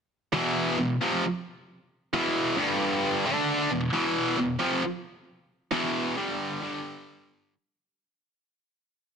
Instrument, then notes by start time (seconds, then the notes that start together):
distorted electric guitar
0.33 E2 B2 E3
0.78 E2 B2
1.01 F2 C3 F3
2.14 E2 B2 E3
2.58 G2 D3 G3
3.26 D3 A3 D4
3.71 E2 B2
3.93 E2 B2 E3
4.38 E2 B2
4.59 F2 C3 F3
5.72 E2 B2 E3
6.17 G2 D3 G3
6.62 G2 D3 G3